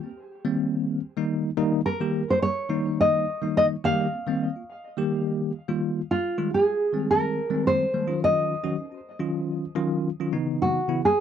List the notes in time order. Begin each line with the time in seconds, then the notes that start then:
0.04 A#3 C4
0.44 D#3 G3 A#3 C4
1.17 D#3 G3 A#3 D#4
1.57 D#3 G3 A#3 D#4
1.86 A#4
2.01 D#3 G3 A#3 G4
2.29 A#3 F4 C5
2.42 C#5
2.69 D#3 G3 A#3 D#4
3.01 D#5
3.42 D#3 G3 A#3 D#4
3.57 D#5
3.84 D#3 G3 A#3 G4 F5
4.12 A#3 C4
4.27 D#3 G3 A#3 C4
4.56 A#3 F4
4.97 D#3 G3 A#3 G4
5.68 D#3 G3 A#3 F4
6.11 F4
6.38 D#3 G3 G#3 F4
6.53 G#3 F4 G#4
6.65 G#3 F4
6.93 D#3 G3 G#3 C4
7.11 A#4
7.50 D#3 G3 G#3 C4
7.67 C5
7.94 D#3 G3 G#3 A#3
8.07 D#3 F#3 C#4 F4
8.24 D#5
8.64 D#3 F#3 C#4 F#4
8.78 C#4 D#4
8.91 C#4 F#4
9.19 D#3 F#3 C#4 F4
9.75 D#3 F#3 C#4 F4
10.20 D#3 F#3 C#4 F4
10.32 C#3 E3 B3 D#4
10.62 F#4
10.88 C#3 E3 B3 E4
11.04 B3 D#4 G#4
11.16 B3 E4